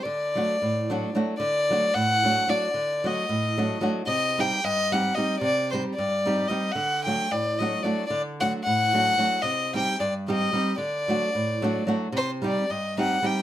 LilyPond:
<<
  \new Staff \with { instrumentName = "Violin" } { \time 5/8 \tempo 4 = 112 d''2 r8 | d''4 fis''4 d''8~ | d''8 ees''4. r8 | ees''8 g''8 ees''8 fis''8 ees''8 |
d''8 c''8 d''4 ees''8 | fis''8 g''8 d''8 ees''8 d''8 | d''8 fis''8 fis''4. | ees''8 g''8 d''8 ees''4 |
d''2 r8 | c''8 d''8 ees''8 fis''8 g''8 | }
  \new Staff \with { instrumentName = "Nylon-string guitar" } { \time 5/8 << { r8 <fis a d' fis'>8 r8 <fis a d' fis'>8 <fis a d' fis'>8 | r8 <fis a d' fis'>8 r8 <fis a d' fis'>8 <fis a d' fis'>8 | r8 <fis a d' fis'>8 r8 <fis a d' fis'>8 <fis a d' fis'>8 | r8 <g c' ees' g'>8 r8 <g c' ees' g'>8 <g c' ees' g'>8 |
r8 <g c' ees' g'>8 r8 <g c' ees' g'>8 <g c' ees' g'>8 | r8 <fis a d' fis'>8 r8 <fis a d' fis'>8 <fis a d' fis'>8 | r8 <fis a d' fis'>8 r8 <fis a d' fis'>8 <fis a d' fis'>8 | r8 <g c' ees' g'>8 r8 <g c' ees' g'>8 <g c' ees' g'>8 |
r8 <fis a d' fis'>8 r8 <fis a d' fis'>8 <fis a d' fis'>8 | r8 <g c' ees' g'>8 r8 <g c' ees' g'>8 <g c' ees' g'>8 | } \\ { d4 a,4 r8 | d4 a,4 r8 | d4 a,4 r8 | c4 g,4 r8 |
c4 g,4 r8 | d4 a,4 r8 | d4 a,4 r8 | c4 g,4 r8 |
d4 a,4 r8 | c4 g,4 r8 | } >> }
>>